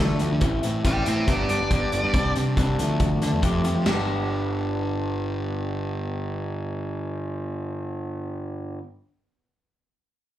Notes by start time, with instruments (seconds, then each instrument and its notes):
0.00 picked electric bass D3, clean electric guitar F3 A3 D4
0.19 picked electric bass D2, closed hi-hat
0.32 picked electric bass D3
0.41 picked electric bass A1, clean electric guitar E3 C4 E4, kick, closed hi-hat
0.63 picked electric bass A2, clean electric guitar C4 E4, closed hi-hat
0.84 picked electric bass A1, clean electric guitar E3 C4 E4, lead electric guitar D5 G5, kick, closed hi-hat
1.06 picked electric bass A2, clean electric guitar C4 E4, lead electric guitar C5 E5, closed hi-hat
1.27 picked electric bass G1, clean electric guitar G3 B3 D4, lead electric guitar A#4 D5, kick, closed hi-hat
1.49 picked electric bass G2, clean electric guitar B3 D4, lead electric guitar D5, closed hi-hat
1.61 picked electric bass G1
1.71 picked electric bass G2, clean electric guitar G3 B3 D4, kick, closed hi-hat
1.92 picked electric bass G1, closed hi-hat
2.04 picked electric bass G2
2.14 picked electric bass C2, clean electric guitar G3 C4 D4, kick, closed hi-hat
2.36 picked electric bass C3, clean electric guitar C4 D4, closed hi-hat
2.57 picked electric bass C2, clean electric guitar G3 C4 D4, kick, closed hi-hat
2.78 picked electric bass D2, clean electric guitar F3 A3 D4, closed hi-hat
3.00 picked electric bass D2, kick, closed hi-hat
3.22 picked electric bass D3, clean electric guitar A3 D4, closed hi-hat
3.33 picked electric bass E2
3.42 picked electric bass F2, clean electric guitar F3 A3 C4 G4, kick, closed hi-hat
3.64 picked electric bass F2, closed hi-hat
3.75 picked electric bass F3
3.85 picked electric bass G1, clean electric guitar B3 D4 G4, snare, splash